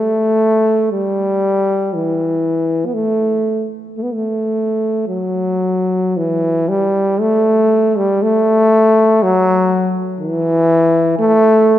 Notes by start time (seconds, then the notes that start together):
Already playing: A3
0.92 G3
1.94 E3
2.86 B3
2.94 A3
3.97 A3
4.03 B3
4.14 A3
5.08 F#3
6.17 E3
6.69 G3
7.20 A3
7.97 G3
8.22 A3
9.23 F#3
10.21 E3
11.19 A3